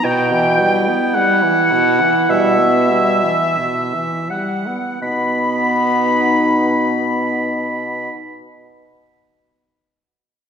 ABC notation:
X:1
M:4/4
L:1/16
Q:1/4=44
K:B
V:1 name="Flute"
=g4 f4 e6 f2 | b16 |]
V:2 name="Oboe"
=g4 f4 e6 f2 | b16 |]
V:3 name="Clarinet"
E12- E2 z2 | D16 |]
V:4 name="French horn" clef=bass
B,, E, =G, B, G, E, B,, E, G, B, G, E, B,, E, G, B, | B,16 |]
V:5 name="Bassoon" clef=bass
B,,4 z4 B,,4 z4 | B,,16 |]